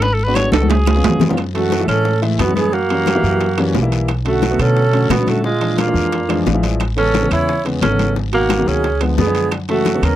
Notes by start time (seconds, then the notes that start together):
Already playing: G#1
0.02 B4, high bongo, high conga, high timbale, long guiro
0.14 A4
0.18 high bongo, high conga
0.24 G#3 B3 B4
0.28 D4 F#4
0.35 C#5, high bongo, high conga, high timbale, low timbale, short guiro, claves
0.52 C#2 A4, high bongo, high conga, high timbale, short guiro
0.61 G#3 B3 D4 F#4, high conga
0.69 G#4, high bongo, low timbale, long guiro
0.86 high bongo, low timbale, claves
0.95 G#3 B3 C#4 F4
1.03 F#2, low timbale, short guiro
1.09 low conga
1.20 low bongo, low conga, low timbale, short guiro
1.29 G#3 B3 C#4 F4, low conga
1.37 high bongo, high conga, high timbale, long guiro, claves
1.54 E3 G#3 A3 C#4 F#4, high bongo, high conga, high timbale
1.70 high bongo, high conga, high timbale, short guiro
1.79 E3 G#3 A3 E4
1.87 A2 C#4 A4, high conga, high timbale, short guiro, claves
2.04 high bongo, high conga, long guiro
2.21 E3 G#3 A3 E4, high bongo, high conga, high timbale
2.38 F#2 B3 F#4, high bongo, low bongo, high conga, high timbale, short guiro, claves
2.47 E3 G#3 A3 C#4
2.55 B3 G#4, high bongo, high conga, high timbale, short guiro
2.72 A#3 F#4, high bongo, high conga, long guiro
2.89 E3 G3 A#3 C#4, high bongo, high conga, high timbale
3.06 high bongo, high conga, high timbale, short guiro, claves
3.15 E3 G3 A#3 E4
3.23 F#2, high conga, short guiro
3.40 high bongo, high conga, high timbale, long guiro
3.57 E3 G3 A#3 C#4, high conga, high timbale, claves
3.74 B1, high bongo, low bongo, low timbale, short guiro
3.82 E3 G3 A#3 E4
3.92 high bongo, high timbale, short guiro
4.08 high bongo, high conga, high timbale, long guiro, claves
4.25 D3 F#3 A3 C#4 F#4, high bongo, high conga, high timbale
4.42 high bongo, high conga, high timbale, short guiro
4.50 D3 F#3 A3 B3
4.59 B2 C#4 A4, high conga, high timbale, short guiro, claves
4.76 high bongo, high conga, long guiro
4.92 D3 F#3 A3 C#4, high bongo, high conga, high timbale
5.09 A#2 B3 F#4, high bongo, low bongo, high conga, high timbale, low timbale, short guiro, claves
5.18 D3 F#3 A3 C#4
5.27 A3 F#4, high bongo, high conga, high timbale, short guiro
5.44 G#3 F4, high bongo, high conga, long guiro
5.61 E3 F3 G#3 D4, high bongo, high conga, high timbale
5.78 A#3 F4, high bongo, high conga, high timbale, short guiro, claves
5.86 E3 F3 G#3 D4
5.94 F2, high conga, short guiro
6.12 high bongo, high conga, high timbale, long guiro
6.29 E3 F3 G#3 D4, high conga, high timbale, claves
6.45 A1 F5, high bongo, low bongo, low timbale, short guiro
6.54 E3 F3 G#3 E4
6.63 D5, high bongo, high conga, high timbale, short guiro
6.80 high bongo, high conga, high timbale, long guiro, claves
6.96 C#3 E3 G#3 B3 C#4 A4, high bongo, high conga, high timbale
7.14 high bongo, high conga, high timbale, short guiro
7.22 C#3 E3 G#3 B3
7.31 E2 E4 C#5, high conga, high timbale, short guiro, claves
7.48 high bongo, high conga, long guiro
7.65 C#3 E3 G#3 B3, high bongo, high conga, high timbale
7.81 G#1 C#4 A4, high bongo, low bongo, high conga, high timbale, short guiro, claves
7.90 C#3 E3 G#3 B3
7.99 high bongo, high conga, high timbale, short guiro
8.16 high bongo, high conga, long guiro
8.32 B2 D#3 F#3 A#3 F#4, high bongo, high conga, high timbale
8.49 high bongo, high conga, high timbale, short guiro, claves
8.58 B2 D#3 F#3 A#3
8.66 C#2 C#4 G#4, high conga, short guiro
8.84 high bongo, high conga, high timbale, long guiro
9.00 D3 F3 G#3 B3, high conga, high timbale, claves
9.18 F#2 B3 G#4, high bongo, low bongo, low timbale, short guiro
9.26 D3 F3 G#3 D4
9.35 high bongo, high timbale, short guiro
9.51 high bongo, high conga, high timbale, long guiro, claves
9.68 C#3 E3 G#3 A3 F#4, high bongo, high conga, high timbale
9.85 high bongo, high conga, high timbale, short guiro
9.94 C#3 E3 G#3 B3
10.01 D#2 C#4 A#4, high conga, high timbale, short guiro, claves